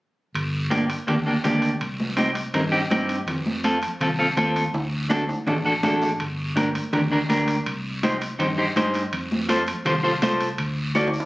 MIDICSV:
0, 0, Header, 1, 4, 480
1, 0, Start_track
1, 0, Key_signature, -2, "minor"
1, 0, Tempo, 365854
1, 453, Time_signature, 4, 2, 24, 8
1, 14764, End_track
2, 0, Start_track
2, 0, Title_t, "Clean electric guitar"
2, 0, Program_c, 0, 27
2, 924, Note_on_c, 0, 58, 77
2, 934, Note_on_c, 0, 62, 60
2, 937, Note_on_c, 0, 67, 84
2, 1097, Note_off_c, 0, 58, 0
2, 1099, Note_off_c, 0, 62, 0
2, 1103, Note_off_c, 0, 67, 0
2, 1407, Note_on_c, 0, 58, 64
2, 1415, Note_on_c, 0, 62, 62
2, 1425, Note_on_c, 0, 67, 66
2, 1496, Note_off_c, 0, 58, 0
2, 1497, Note_off_c, 0, 62, 0
2, 1498, Note_off_c, 0, 67, 0
2, 1657, Note_on_c, 0, 58, 69
2, 1663, Note_on_c, 0, 62, 66
2, 1676, Note_on_c, 0, 67, 71
2, 1740, Note_off_c, 0, 58, 0
2, 1744, Note_off_c, 0, 62, 0
2, 1746, Note_off_c, 0, 67, 0
2, 1887, Note_on_c, 0, 58, 68
2, 1890, Note_on_c, 0, 62, 63
2, 1896, Note_on_c, 0, 67, 91
2, 2227, Note_off_c, 0, 62, 0
2, 2228, Note_off_c, 0, 58, 0
2, 2231, Note_off_c, 0, 67, 0
2, 2844, Note_on_c, 0, 60, 81
2, 2850, Note_on_c, 0, 63, 72
2, 2858, Note_on_c, 0, 67, 76
2, 3017, Note_off_c, 0, 60, 0
2, 3020, Note_off_c, 0, 63, 0
2, 3024, Note_off_c, 0, 67, 0
2, 3331, Note_on_c, 0, 60, 67
2, 3339, Note_on_c, 0, 63, 58
2, 3339, Note_on_c, 0, 70, 75
2, 3418, Note_off_c, 0, 60, 0
2, 3419, Note_off_c, 0, 63, 0
2, 3421, Note_off_c, 0, 70, 0
2, 3566, Note_on_c, 0, 67, 86
2, 3568, Note_on_c, 0, 63, 64
2, 3573, Note_on_c, 0, 60, 67
2, 3654, Note_off_c, 0, 60, 0
2, 3655, Note_off_c, 0, 63, 0
2, 3657, Note_off_c, 0, 67, 0
2, 3811, Note_on_c, 0, 60, 76
2, 3821, Note_on_c, 0, 63, 68
2, 3826, Note_on_c, 0, 67, 82
2, 4149, Note_off_c, 0, 60, 0
2, 4154, Note_off_c, 0, 63, 0
2, 4157, Note_off_c, 0, 67, 0
2, 4777, Note_on_c, 0, 60, 84
2, 4783, Note_on_c, 0, 65, 65
2, 4789, Note_on_c, 0, 69, 87
2, 4944, Note_off_c, 0, 60, 0
2, 4947, Note_off_c, 0, 65, 0
2, 4950, Note_off_c, 0, 69, 0
2, 5263, Note_on_c, 0, 60, 68
2, 5268, Note_on_c, 0, 65, 65
2, 5280, Note_on_c, 0, 69, 71
2, 5343, Note_off_c, 0, 60, 0
2, 5347, Note_off_c, 0, 65, 0
2, 5349, Note_off_c, 0, 69, 0
2, 5494, Note_on_c, 0, 60, 76
2, 5499, Note_on_c, 0, 65, 79
2, 5506, Note_on_c, 0, 69, 70
2, 5579, Note_off_c, 0, 60, 0
2, 5582, Note_off_c, 0, 65, 0
2, 5583, Note_off_c, 0, 69, 0
2, 5732, Note_on_c, 0, 60, 79
2, 5741, Note_on_c, 0, 65, 74
2, 5749, Note_on_c, 0, 69, 76
2, 6070, Note_off_c, 0, 60, 0
2, 6075, Note_off_c, 0, 65, 0
2, 6075, Note_off_c, 0, 69, 0
2, 6685, Note_on_c, 0, 62, 81
2, 6694, Note_on_c, 0, 66, 73
2, 6699, Note_on_c, 0, 69, 94
2, 6858, Note_off_c, 0, 62, 0
2, 6863, Note_off_c, 0, 66, 0
2, 6865, Note_off_c, 0, 69, 0
2, 7171, Note_on_c, 0, 62, 74
2, 7178, Note_on_c, 0, 66, 63
2, 7189, Note_on_c, 0, 69, 66
2, 7257, Note_off_c, 0, 62, 0
2, 7262, Note_off_c, 0, 66, 0
2, 7264, Note_off_c, 0, 69, 0
2, 7412, Note_on_c, 0, 62, 70
2, 7419, Note_on_c, 0, 66, 70
2, 7424, Note_on_c, 0, 69, 87
2, 7498, Note_off_c, 0, 62, 0
2, 7501, Note_off_c, 0, 66, 0
2, 7504, Note_off_c, 0, 69, 0
2, 7650, Note_on_c, 0, 62, 73
2, 7656, Note_on_c, 0, 66, 73
2, 7666, Note_on_c, 0, 69, 86
2, 7989, Note_off_c, 0, 62, 0
2, 7992, Note_off_c, 0, 66, 0
2, 7996, Note_off_c, 0, 69, 0
2, 8602, Note_on_c, 0, 62, 77
2, 8611, Note_on_c, 0, 67, 70
2, 8621, Note_on_c, 0, 70, 72
2, 8776, Note_off_c, 0, 62, 0
2, 8782, Note_off_c, 0, 67, 0
2, 8783, Note_off_c, 0, 70, 0
2, 9089, Note_on_c, 0, 62, 72
2, 9093, Note_on_c, 0, 67, 55
2, 9097, Note_on_c, 0, 70, 67
2, 9175, Note_off_c, 0, 67, 0
2, 9177, Note_off_c, 0, 62, 0
2, 9180, Note_off_c, 0, 70, 0
2, 9335, Note_on_c, 0, 62, 80
2, 9347, Note_on_c, 0, 67, 65
2, 9347, Note_on_c, 0, 70, 83
2, 9420, Note_off_c, 0, 62, 0
2, 9422, Note_off_c, 0, 67, 0
2, 9425, Note_off_c, 0, 70, 0
2, 9565, Note_on_c, 0, 62, 73
2, 9574, Note_on_c, 0, 67, 59
2, 9577, Note_on_c, 0, 70, 89
2, 9907, Note_off_c, 0, 62, 0
2, 9907, Note_off_c, 0, 67, 0
2, 9911, Note_off_c, 0, 70, 0
2, 10538, Note_on_c, 0, 63, 67
2, 10542, Note_on_c, 0, 67, 64
2, 10554, Note_on_c, 0, 72, 74
2, 10705, Note_off_c, 0, 67, 0
2, 10706, Note_off_c, 0, 63, 0
2, 10707, Note_off_c, 0, 72, 0
2, 11007, Note_on_c, 0, 63, 71
2, 11014, Note_on_c, 0, 67, 58
2, 11019, Note_on_c, 0, 72, 77
2, 11094, Note_off_c, 0, 63, 0
2, 11097, Note_off_c, 0, 67, 0
2, 11100, Note_off_c, 0, 72, 0
2, 11254, Note_on_c, 0, 63, 73
2, 11262, Note_on_c, 0, 67, 72
2, 11270, Note_on_c, 0, 72, 72
2, 11337, Note_off_c, 0, 63, 0
2, 11342, Note_off_c, 0, 67, 0
2, 11343, Note_off_c, 0, 72, 0
2, 11494, Note_on_c, 0, 63, 80
2, 11503, Note_on_c, 0, 67, 62
2, 11506, Note_on_c, 0, 72, 92
2, 11830, Note_off_c, 0, 63, 0
2, 11832, Note_off_c, 0, 67, 0
2, 11835, Note_off_c, 0, 72, 0
2, 12446, Note_on_c, 0, 65, 82
2, 12455, Note_on_c, 0, 69, 74
2, 12462, Note_on_c, 0, 72, 79
2, 12617, Note_off_c, 0, 65, 0
2, 12622, Note_off_c, 0, 69, 0
2, 12622, Note_off_c, 0, 72, 0
2, 12933, Note_on_c, 0, 65, 70
2, 12947, Note_on_c, 0, 69, 54
2, 12948, Note_on_c, 0, 72, 82
2, 13018, Note_off_c, 0, 65, 0
2, 13020, Note_off_c, 0, 69, 0
2, 13024, Note_off_c, 0, 72, 0
2, 13165, Note_on_c, 0, 65, 78
2, 13175, Note_on_c, 0, 72, 77
2, 13177, Note_on_c, 0, 69, 69
2, 13254, Note_off_c, 0, 65, 0
2, 13256, Note_off_c, 0, 69, 0
2, 13257, Note_off_c, 0, 72, 0
2, 13412, Note_on_c, 0, 65, 75
2, 13421, Note_on_c, 0, 69, 65
2, 13424, Note_on_c, 0, 72, 87
2, 13748, Note_off_c, 0, 65, 0
2, 13750, Note_off_c, 0, 69, 0
2, 13753, Note_off_c, 0, 72, 0
2, 14366, Note_on_c, 0, 66, 87
2, 14380, Note_on_c, 0, 69, 62
2, 14383, Note_on_c, 0, 74, 80
2, 14537, Note_off_c, 0, 66, 0
2, 14540, Note_off_c, 0, 69, 0
2, 14545, Note_off_c, 0, 74, 0
2, 14764, End_track
3, 0, Start_track
3, 0, Title_t, "Fingered electric bass"
3, 0, Program_c, 1, 33
3, 454, Note_on_c, 1, 31, 94
3, 1222, Note_off_c, 1, 31, 0
3, 1415, Note_on_c, 1, 38, 78
3, 1798, Note_off_c, 1, 38, 0
3, 1896, Note_on_c, 1, 38, 82
3, 2279, Note_off_c, 1, 38, 0
3, 2376, Note_on_c, 1, 36, 99
3, 3144, Note_off_c, 1, 36, 0
3, 3327, Note_on_c, 1, 43, 75
3, 3714, Note_off_c, 1, 43, 0
3, 3816, Note_on_c, 1, 43, 85
3, 4200, Note_off_c, 1, 43, 0
3, 4284, Note_on_c, 1, 41, 98
3, 5057, Note_off_c, 1, 41, 0
3, 5252, Note_on_c, 1, 36, 78
3, 5637, Note_off_c, 1, 36, 0
3, 5733, Note_on_c, 1, 39, 74
3, 6118, Note_off_c, 1, 39, 0
3, 6214, Note_on_c, 1, 38, 108
3, 6983, Note_off_c, 1, 38, 0
3, 7173, Note_on_c, 1, 33, 76
3, 7558, Note_off_c, 1, 33, 0
3, 7659, Note_on_c, 1, 33, 85
3, 8041, Note_off_c, 1, 33, 0
3, 8135, Note_on_c, 1, 31, 104
3, 8902, Note_off_c, 1, 31, 0
3, 9100, Note_on_c, 1, 38, 80
3, 9482, Note_off_c, 1, 38, 0
3, 9579, Note_on_c, 1, 38, 87
3, 9961, Note_off_c, 1, 38, 0
3, 10054, Note_on_c, 1, 36, 104
3, 10821, Note_off_c, 1, 36, 0
3, 11018, Note_on_c, 1, 43, 70
3, 11400, Note_off_c, 1, 43, 0
3, 11498, Note_on_c, 1, 43, 77
3, 11880, Note_off_c, 1, 43, 0
3, 11980, Note_on_c, 1, 41, 95
3, 12744, Note_off_c, 1, 41, 0
3, 12934, Note_on_c, 1, 36, 83
3, 13317, Note_off_c, 1, 36, 0
3, 13415, Note_on_c, 1, 36, 83
3, 13797, Note_off_c, 1, 36, 0
3, 13886, Note_on_c, 1, 38, 90
3, 14656, Note_off_c, 1, 38, 0
3, 14764, End_track
4, 0, Start_track
4, 0, Title_t, "Drums"
4, 453, Note_on_c, 9, 74, 64
4, 465, Note_on_c, 9, 65, 64
4, 584, Note_off_c, 9, 74, 0
4, 596, Note_off_c, 9, 65, 0
4, 935, Note_on_c, 9, 65, 63
4, 937, Note_on_c, 9, 73, 69
4, 939, Note_on_c, 9, 63, 77
4, 1066, Note_off_c, 9, 65, 0
4, 1068, Note_off_c, 9, 73, 0
4, 1070, Note_off_c, 9, 63, 0
4, 1176, Note_on_c, 9, 65, 71
4, 1180, Note_on_c, 9, 73, 68
4, 1308, Note_off_c, 9, 65, 0
4, 1311, Note_off_c, 9, 73, 0
4, 1418, Note_on_c, 9, 65, 68
4, 1419, Note_on_c, 9, 64, 85
4, 1424, Note_on_c, 9, 74, 64
4, 1549, Note_off_c, 9, 65, 0
4, 1550, Note_off_c, 9, 64, 0
4, 1555, Note_off_c, 9, 74, 0
4, 1893, Note_on_c, 9, 65, 61
4, 1898, Note_on_c, 9, 73, 68
4, 1904, Note_on_c, 9, 63, 85
4, 1904, Note_on_c, 9, 64, 77
4, 2024, Note_off_c, 9, 65, 0
4, 2029, Note_off_c, 9, 73, 0
4, 2035, Note_off_c, 9, 63, 0
4, 2035, Note_off_c, 9, 64, 0
4, 2127, Note_on_c, 9, 65, 55
4, 2131, Note_on_c, 9, 73, 70
4, 2258, Note_off_c, 9, 65, 0
4, 2262, Note_off_c, 9, 73, 0
4, 2372, Note_on_c, 9, 74, 65
4, 2375, Note_on_c, 9, 65, 69
4, 2503, Note_off_c, 9, 74, 0
4, 2506, Note_off_c, 9, 65, 0
4, 2621, Note_on_c, 9, 63, 69
4, 2753, Note_off_c, 9, 63, 0
4, 2845, Note_on_c, 9, 65, 59
4, 2850, Note_on_c, 9, 73, 72
4, 2866, Note_on_c, 9, 63, 72
4, 2976, Note_off_c, 9, 65, 0
4, 2981, Note_off_c, 9, 73, 0
4, 2997, Note_off_c, 9, 63, 0
4, 3087, Note_on_c, 9, 65, 69
4, 3100, Note_on_c, 9, 73, 66
4, 3218, Note_off_c, 9, 65, 0
4, 3231, Note_off_c, 9, 73, 0
4, 3334, Note_on_c, 9, 65, 72
4, 3334, Note_on_c, 9, 74, 69
4, 3343, Note_on_c, 9, 64, 85
4, 3465, Note_off_c, 9, 65, 0
4, 3465, Note_off_c, 9, 74, 0
4, 3474, Note_off_c, 9, 64, 0
4, 3808, Note_on_c, 9, 73, 61
4, 3820, Note_on_c, 9, 63, 94
4, 3823, Note_on_c, 9, 65, 64
4, 3940, Note_off_c, 9, 73, 0
4, 3951, Note_off_c, 9, 63, 0
4, 3954, Note_off_c, 9, 65, 0
4, 4057, Note_on_c, 9, 65, 63
4, 4058, Note_on_c, 9, 73, 71
4, 4188, Note_off_c, 9, 65, 0
4, 4189, Note_off_c, 9, 73, 0
4, 4292, Note_on_c, 9, 74, 76
4, 4297, Note_on_c, 9, 64, 75
4, 4300, Note_on_c, 9, 65, 73
4, 4424, Note_off_c, 9, 74, 0
4, 4428, Note_off_c, 9, 64, 0
4, 4431, Note_off_c, 9, 65, 0
4, 4539, Note_on_c, 9, 63, 72
4, 4670, Note_off_c, 9, 63, 0
4, 4773, Note_on_c, 9, 73, 69
4, 4776, Note_on_c, 9, 63, 76
4, 4781, Note_on_c, 9, 65, 59
4, 4904, Note_off_c, 9, 73, 0
4, 4908, Note_off_c, 9, 63, 0
4, 4912, Note_off_c, 9, 65, 0
4, 5009, Note_on_c, 9, 73, 68
4, 5020, Note_on_c, 9, 65, 67
4, 5141, Note_off_c, 9, 73, 0
4, 5152, Note_off_c, 9, 65, 0
4, 5255, Note_on_c, 9, 64, 76
4, 5258, Note_on_c, 9, 74, 74
4, 5263, Note_on_c, 9, 65, 71
4, 5386, Note_off_c, 9, 64, 0
4, 5389, Note_off_c, 9, 74, 0
4, 5394, Note_off_c, 9, 65, 0
4, 5734, Note_on_c, 9, 73, 62
4, 5735, Note_on_c, 9, 63, 87
4, 5739, Note_on_c, 9, 65, 66
4, 5865, Note_off_c, 9, 73, 0
4, 5867, Note_off_c, 9, 63, 0
4, 5871, Note_off_c, 9, 65, 0
4, 5982, Note_on_c, 9, 73, 73
4, 5985, Note_on_c, 9, 65, 63
4, 6114, Note_off_c, 9, 73, 0
4, 6116, Note_off_c, 9, 65, 0
4, 6214, Note_on_c, 9, 74, 74
4, 6224, Note_on_c, 9, 65, 79
4, 6346, Note_off_c, 9, 74, 0
4, 6355, Note_off_c, 9, 65, 0
4, 6689, Note_on_c, 9, 73, 73
4, 6691, Note_on_c, 9, 63, 71
4, 6705, Note_on_c, 9, 66, 73
4, 6820, Note_off_c, 9, 73, 0
4, 6822, Note_off_c, 9, 63, 0
4, 6837, Note_off_c, 9, 66, 0
4, 6939, Note_on_c, 9, 73, 58
4, 6941, Note_on_c, 9, 65, 74
4, 7071, Note_off_c, 9, 73, 0
4, 7073, Note_off_c, 9, 65, 0
4, 7172, Note_on_c, 9, 64, 73
4, 7181, Note_on_c, 9, 74, 73
4, 7183, Note_on_c, 9, 66, 101
4, 7303, Note_off_c, 9, 64, 0
4, 7313, Note_off_c, 9, 74, 0
4, 7315, Note_off_c, 9, 66, 0
4, 7651, Note_on_c, 9, 63, 88
4, 7653, Note_on_c, 9, 66, 83
4, 7657, Note_on_c, 9, 73, 67
4, 7783, Note_off_c, 9, 63, 0
4, 7784, Note_off_c, 9, 66, 0
4, 7788, Note_off_c, 9, 73, 0
4, 7895, Note_on_c, 9, 73, 61
4, 7897, Note_on_c, 9, 66, 84
4, 8026, Note_off_c, 9, 73, 0
4, 8029, Note_off_c, 9, 66, 0
4, 8132, Note_on_c, 9, 74, 63
4, 8134, Note_on_c, 9, 65, 74
4, 8263, Note_off_c, 9, 74, 0
4, 8265, Note_off_c, 9, 65, 0
4, 8615, Note_on_c, 9, 63, 76
4, 8616, Note_on_c, 9, 65, 67
4, 8619, Note_on_c, 9, 73, 66
4, 8746, Note_off_c, 9, 63, 0
4, 8747, Note_off_c, 9, 65, 0
4, 8751, Note_off_c, 9, 73, 0
4, 8857, Note_on_c, 9, 73, 68
4, 8859, Note_on_c, 9, 65, 69
4, 8988, Note_off_c, 9, 73, 0
4, 8990, Note_off_c, 9, 65, 0
4, 9091, Note_on_c, 9, 64, 84
4, 9096, Note_on_c, 9, 74, 65
4, 9097, Note_on_c, 9, 65, 71
4, 9222, Note_off_c, 9, 64, 0
4, 9228, Note_off_c, 9, 65, 0
4, 9228, Note_off_c, 9, 74, 0
4, 9572, Note_on_c, 9, 63, 86
4, 9574, Note_on_c, 9, 65, 62
4, 9583, Note_on_c, 9, 73, 66
4, 9703, Note_off_c, 9, 63, 0
4, 9705, Note_off_c, 9, 65, 0
4, 9714, Note_off_c, 9, 73, 0
4, 9810, Note_on_c, 9, 65, 60
4, 9821, Note_on_c, 9, 73, 70
4, 9942, Note_off_c, 9, 65, 0
4, 9952, Note_off_c, 9, 73, 0
4, 10056, Note_on_c, 9, 65, 78
4, 10069, Note_on_c, 9, 74, 74
4, 10187, Note_off_c, 9, 65, 0
4, 10200, Note_off_c, 9, 74, 0
4, 10539, Note_on_c, 9, 65, 64
4, 10540, Note_on_c, 9, 63, 86
4, 10542, Note_on_c, 9, 73, 65
4, 10671, Note_off_c, 9, 63, 0
4, 10671, Note_off_c, 9, 65, 0
4, 10673, Note_off_c, 9, 73, 0
4, 10775, Note_on_c, 9, 73, 67
4, 10781, Note_on_c, 9, 65, 65
4, 10907, Note_off_c, 9, 73, 0
4, 10912, Note_off_c, 9, 65, 0
4, 11015, Note_on_c, 9, 74, 69
4, 11016, Note_on_c, 9, 64, 74
4, 11019, Note_on_c, 9, 65, 71
4, 11146, Note_off_c, 9, 74, 0
4, 11147, Note_off_c, 9, 64, 0
4, 11151, Note_off_c, 9, 65, 0
4, 11495, Note_on_c, 9, 73, 72
4, 11497, Note_on_c, 9, 63, 89
4, 11506, Note_on_c, 9, 65, 70
4, 11626, Note_off_c, 9, 73, 0
4, 11628, Note_off_c, 9, 63, 0
4, 11637, Note_off_c, 9, 65, 0
4, 11728, Note_on_c, 9, 73, 68
4, 11745, Note_on_c, 9, 65, 58
4, 11859, Note_off_c, 9, 73, 0
4, 11877, Note_off_c, 9, 65, 0
4, 11971, Note_on_c, 9, 74, 67
4, 11976, Note_on_c, 9, 65, 78
4, 12102, Note_off_c, 9, 74, 0
4, 12107, Note_off_c, 9, 65, 0
4, 12223, Note_on_c, 9, 63, 72
4, 12354, Note_off_c, 9, 63, 0
4, 12451, Note_on_c, 9, 73, 71
4, 12453, Note_on_c, 9, 65, 66
4, 12456, Note_on_c, 9, 63, 77
4, 12582, Note_off_c, 9, 73, 0
4, 12584, Note_off_c, 9, 65, 0
4, 12587, Note_off_c, 9, 63, 0
4, 12683, Note_on_c, 9, 73, 65
4, 12699, Note_on_c, 9, 65, 71
4, 12814, Note_off_c, 9, 73, 0
4, 12830, Note_off_c, 9, 65, 0
4, 12923, Note_on_c, 9, 74, 69
4, 12927, Note_on_c, 9, 64, 78
4, 12935, Note_on_c, 9, 65, 73
4, 13054, Note_off_c, 9, 74, 0
4, 13058, Note_off_c, 9, 64, 0
4, 13066, Note_off_c, 9, 65, 0
4, 13410, Note_on_c, 9, 65, 63
4, 13410, Note_on_c, 9, 66, 75
4, 13410, Note_on_c, 9, 73, 68
4, 13411, Note_on_c, 9, 63, 80
4, 13541, Note_off_c, 9, 65, 0
4, 13541, Note_off_c, 9, 66, 0
4, 13542, Note_off_c, 9, 63, 0
4, 13542, Note_off_c, 9, 73, 0
4, 13648, Note_on_c, 9, 73, 68
4, 13652, Note_on_c, 9, 65, 61
4, 13779, Note_off_c, 9, 73, 0
4, 13783, Note_off_c, 9, 65, 0
4, 13886, Note_on_c, 9, 65, 75
4, 13889, Note_on_c, 9, 74, 74
4, 14017, Note_off_c, 9, 65, 0
4, 14020, Note_off_c, 9, 74, 0
4, 14365, Note_on_c, 9, 63, 71
4, 14365, Note_on_c, 9, 73, 72
4, 14369, Note_on_c, 9, 65, 60
4, 14496, Note_off_c, 9, 63, 0
4, 14496, Note_off_c, 9, 73, 0
4, 14500, Note_off_c, 9, 65, 0
4, 14534, Note_on_c, 9, 65, 76
4, 14610, Note_on_c, 9, 73, 64
4, 14666, Note_off_c, 9, 65, 0
4, 14696, Note_on_c, 9, 65, 69
4, 14741, Note_off_c, 9, 73, 0
4, 14764, Note_off_c, 9, 65, 0
4, 14764, End_track
0, 0, End_of_file